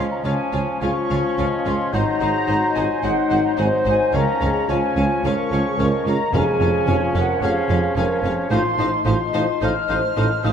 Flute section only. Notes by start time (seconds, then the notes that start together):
0.10 A#5
0.23 G#5
0.81 C#6
1.65 C6
1.93 A#5
2.75 G#5
3.03 F#5
3.46 A#5
3.58 G#5
3.86 G#5
4.14 A#5
4.69 G#5
5.25 C#6
6.06 A#5
6.34 G#5
7.15 F#5
7.42 F5
7.97 G#5
8.52 C6
9.06 C6
9.63 F6
10.44 D#6